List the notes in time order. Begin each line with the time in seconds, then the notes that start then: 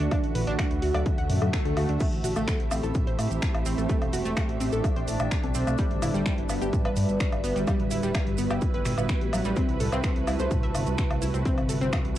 Already playing: D3 A3 F#4 B4 E5
0.00 D4
0.11 D4, kick, closed hi-hat, low woodblock
0.24 A1, closed hi-hat
0.35 A1 B4, mid tom, open hi-hat
0.47 A1 D4, closed hi-hat
0.59 D4, finger snap, kick, closed hi-hat, low woodblock
0.71 D2, closed hi-hat
0.82 D2 F#4, open hi-hat
0.94 D2 F#3 D4 A4 D5, closed hi-hat, low woodblock
1.06 kick, closed hi-hat, swell
1.18 D2 F#5, closed hi-hat
1.30 F#2, mid tom, open hi-hat
1.42 F#2 F#3 D4 A4, closed hi-hat, mid tom, low woodblock
1.53 finger snap, kick, closed hi-hat
1.65 D2 F#3 D4 A4, closed hi-hat
1.77 D2 F#4, open hi-hat, low woodblock
1.89 D2 D4, closed hi-hat
2.00 A3 C4 E4 G4, kick, closed hi-hat, crash, maracas
2.08 C5
2.13 A1, closed hi-hat
2.24 A1 F#4, mid tom, open hi-hat, maracas
2.36 A1 A3, low woodblock, maracas
2.48 A3, finger snap, kick, closed hi-hat, maracas
2.60 A1, closed hi-hat
2.71 A1 C4, open hi-hat, low woodblock, maracas
2.83 A1 E3 C4 A4, closed hi-hat, maracas
2.95 kick, closed hi-hat, mid tom, maracas
3.07 A1 C5, closed hi-hat
3.19 A2, open hi-hat, low woodblock, maracas
3.31 A1, closed hi-hat, maracas
3.42 finger snap, kick, closed hi-hat, maracas
3.54 A1, closed hi-hat, low woodblock
3.66 A1 C4, open hi-hat, maracas
3.78 A1 A3, closed hi-hat, maracas
3.89 A3 D4, kick, closed hi-hat, maracas
4.02 E1, closed hi-hat, low woodblock
4.13 E1 F#4, open hi-hat, maracas
4.25 E1 A3, closed hi-hat, maracas
4.37 A3, finger snap, kick, closed hi-hat, low woodblock, maracas
4.49 A1, closed hi-hat
4.60 A1 C4, open hi-hat, maracas
4.72 A1 E3 C4 A4, closed hi-hat, maracas
4.84 kick, closed hi-hat, low woodblock, maracas
4.96 A1 C5, closed hi-hat
5.08 A1, mid tom, open hi-hat, maracas
5.19 A1, closed hi-hat, mid tom, low woodblock, maracas
5.31 finger snap, kick, closed hi-hat, maracas
5.43 B1 E3 C4 A4, closed hi-hat
5.54 B1 C4, open hi-hat, maracas
5.67 B1 A3, closed hi-hat, low woodblock, maracas
5.78 G3 F#4 B4, kick, closed hi-hat, maracas
5.91 G1, closed hi-hat
5.99 G1 E4 B4, mid tom, open hi-hat, low woodblock, maracas
6.14 G1 G3, closed hi-hat, maracas
6.26 G3, finger snap, kick, closed hi-hat, maracas
6.38 G1, closed hi-hat
6.49 G1 B3, open hi-hat, low woodblock, maracas
6.62 G1 D3 B3 G4, closed hi-hat, maracas
6.73 kick, closed hi-hat, mid tom, maracas
6.85 G1 B4, closed hi-hat, low woodblock
6.96 G2, open hi-hat, maracas
7.09 G1, closed hi-hat, maracas
7.20 finger snap, kick, closed hi-hat, maracas
7.32 G1, closed hi-hat, low woodblock
7.44 G1 B3, open hi-hat, maracas
7.56 G1 G3, closed hi-hat, maracas
7.67 G3 E4, kick, closed hi-hat, low woodblock, maracas
7.80 D1, closed hi-hat
7.91 D1 E4, open hi-hat, maracas
8.03 D1 G3, closed hi-hat, maracas
8.15 G3, finger snap, kick, closed hi-hat, low woodblock, maracas
8.27 G1, closed hi-hat
8.38 G1 B3, open hi-hat, maracas
8.50 G1 D3 B3 G4, closed hi-hat, low woodblock, maracas
8.61 kick, closed hi-hat, maracas
8.74 G1 B4, closed hi-hat
8.86 G1, finger snap, mid tom, open hi-hat, maracas
8.98 G1 B3, closed hi-hat, mid tom, low woodblock, maracas
9.09 finger snap, kick, closed hi-hat, maracas
9.21 A1 D3 B3 G4, closed hi-hat
9.33 A1 F#3, open hi-hat, low woodblock, maracas
9.45 A1 G3, closed hi-hat, maracas
9.56 C3 A3 C4, kick, closed hi-hat, maracas
9.69 C2, closed hi-hat
9.80 C2 A4, mid tom, open hi-hat, maracas
9.92 C2 C4, closed hi-hat, low woodblock, maracas
10.03 C4, finger snap, kick, closed hi-hat, maracas
10.16 C2, closed hi-hat
10.27 C2 E4, open hi-hat, low woodblock, maracas
10.39 C2 E3 C4 A4 C5, closed hi-hat, maracas
10.51 kick, closed hi-hat, mid tom, maracas
10.63 C2 E5, closed hi-hat
10.75 G1, open hi-hat, low woodblock, maracas
10.86 C2, closed hi-hat, maracas
10.98 finger snap, kick, closed hi-hat, maracas
11.10 C2, closed hi-hat, low woodblock
11.22 C2 E4, open hi-hat, maracas
11.34 C2 C4, closed hi-hat, maracas
11.45 G3 C4, kick, closed hi-hat, maracas
11.58 G1, closed hi-hat, low woodblock
11.69 G1 A4, open hi-hat, maracas
11.81 G1 C4, closed hi-hat, maracas
11.93 C4, finger snap, kick, closed hi-hat, low woodblock, maracas
12.05 C2, closed hi-hat